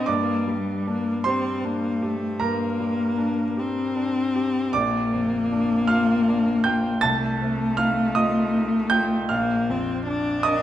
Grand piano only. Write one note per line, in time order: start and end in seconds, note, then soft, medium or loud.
0.00 0.10 D4 medium
0.00 0.10 C5 medium
0.00 0.10 D#5 medium
0.00 0.06 D6 medium
0.06 2.37 G2 medium
0.06 1.21 D5 medium
0.06 1.24 D6 medium
0.47 1.10 G3 soft
0.87 1.48 D4 soft
1.24 1.87 G4 medium
1.24 2.37 C5 medium
1.24 2.40 C6 medium
1.64 2.26 D4 medium
2.02 2.64 G4 medium
2.40 4.72 G2 medium
2.40 4.71 A#4 medium
2.40 4.75 A#5 medium
2.80 3.42 G3 soft
3.18 3.81 D4 soft
3.57 4.21 G4 soft
3.96 4.60 D4 soft
4.35 4.75 G4 medium
4.73 7.00 A#1 medium
4.73 5.86 D5 medium
4.73 5.89 D6 loud
5.13 5.75 F2 soft
5.52 6.13 D4 medium
5.88 6.50 F4 medium
5.88 6.61 F5 medium
5.88 6.65 F6 loud
6.28 6.89 D4 medium
6.64 7.04 F4 soft
6.64 7.01 G5 medium
6.64 7.03 G6 medium
7.01 9.26 C2 medium
7.01 7.75 A5 medium
7.01 7.78 A6 loud
7.41 8.02 C3 soft
7.77 8.38 D#4 soft
7.77 8.14 F5 medium
7.77 8.16 F6 loud
8.15 8.76 F4 soft
8.15 8.87 D#5 medium
8.15 8.91 D#6 loud
8.54 9.15 D#4 soft
8.90 9.30 F4 medium
8.90 9.27 G5 medium
8.90 9.29 G6 loud
9.29 10.62 A#1 medium
9.29 10.40 F5 medium
9.29 10.44 F6 medium
9.70 10.30 F2 medium
10.07 10.62 D4 medium
10.43 10.62 A#4 medium
10.43 10.62 D#5 medium
10.43 10.62 D#6 loud